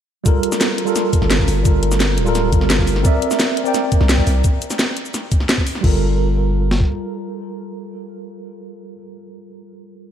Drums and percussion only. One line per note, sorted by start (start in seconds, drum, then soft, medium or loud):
0.26 kick loud
0.26 closed hi-hat medium
0.26 shaker medium
0.43 closed hi-hat loud
0.52 snare medium
0.52 shaker medium
0.61 snare loud
0.61 closed hi-hat medium
0.61 shaker soft
0.78 closed hi-hat loud
0.87 shaker soft
0.96 snare medium
0.96 closed hi-hat medium
0.96 shaker medium
1.13 kick loud
1.13 closed hi-hat medium
1.13 shaker soft
1.22 snare soft
1.31 snare loud
1.31 closed hi-hat medium
1.31 shaker soft
1.39 kick medium
1.48 open hi-hat medium
1.48 shaker soft
1.65 kick loud
1.65 closed hi-hat medium
1.65 shaker soft
1.83 closed hi-hat loud
1.92 snare medium
1.92 shaker medium
2.00 snare loud
2.00 closed hi-hat medium
2.00 shaker soft
2.18 closed hi-hat medium
2.26 shaker soft
2.35 snare medium
2.35 closed hi-hat medium
2.35 shaker soft
2.53 kick loud
2.53 closed hi-hat medium
2.53 shaker soft
2.61 snare soft
2.70 snare loud
2.70 closed hi-hat medium
2.70 shaker soft
2.79 kick medium
2.87 open hi-hat medium
2.87 shaker soft
2.96 snare soft
3.05 kick loud
3.05 closed hi-hat medium
3.05 shaker soft
3.22 closed hi-hat medium
3.31 snare soft
3.31 shaker medium
3.40 snare loud
3.40 closed hi-hat medium
3.40 shaker soft
3.57 closed hi-hat medium
3.66 shaker soft
3.74 snare soft
3.74 closed hi-hat medium
3.74 shaker soft
3.92 kick loud
3.92 closed hi-hat medium
3.92 shaker soft
4.01 snare soft
4.09 snare loud
4.09 closed hi-hat medium
4.09 shaker soft
4.18 kick medium
4.27 open hi-hat medium
4.27 shaker soft
4.44 kick loud
4.44 closed hi-hat medium
4.44 shaker soft
4.62 closed hi-hat medium
4.62 shaker soft
4.70 snare soft
4.70 shaker medium
4.79 snare loud
4.79 closed hi-hat medium
4.79 shaker soft
4.97 closed hi-hat medium
5.05 shaker soft
5.14 snare soft
5.14 closed hi-hat medium
5.14 shaker soft
5.32 kick loud
5.32 closed hi-hat medium
5.32 shaker soft
5.40 snare soft
5.49 snare loud
5.49 closed hi-hat medium
5.49 shaker soft
5.58 kick medium
5.67 open hi-hat medium
5.67 shaker soft
5.75 snare soft
5.84 kick loud
5.84 crash medium
6.71 snare medium
6.80 kick medium